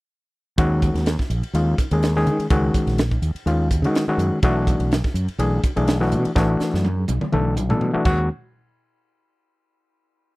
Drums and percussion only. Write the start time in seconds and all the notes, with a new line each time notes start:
0.58 kick, ride
0.82 kick, hi-hat pedal, ride
0.95 snare, ride
1.06 snare, ride
1.19 kick, snare
1.30 hi-hat pedal, ride
1.43 ride
1.55 ride
1.78 kick, hi-hat pedal, ride
1.91 ride
2.03 snare, ride
2.17 snare
2.27 hi-hat pedal, ride
2.40 ride
2.50 kick, ride
2.74 kick, hi-hat pedal, ride
2.87 snare, ride
2.98 snare, ride
3.11 kick
3.22 hi-hat pedal, ride
3.36 ride
3.47 ride
3.71 kick, hi-hat pedal, ride
3.84 ride
3.95 snare, ride
4.19 hi-hat pedal, ride
4.43 kick, ride
4.67 kick, hi-hat pedal, ride
4.80 ride
4.92 snare, ride
5.04 kick, snare
5.15 hi-hat pedal, ride
5.28 ride
5.39 ride
5.64 kick, hi-hat pedal, ride
5.77 ride
5.88 snare, ride
6.02 snare
6.12 hi-hat pedal, ride
6.25 ride
6.36 kick, snare
6.60 snare, hi-hat pedal
6.75 snare
6.85 high tom
7.08 hi-hat pedal, high tom
7.21 mid tom
7.33 mid tom
7.57 hi-hat pedal, mid tom
7.70 mid tom
7.81 mid tom
8.05 kick, crash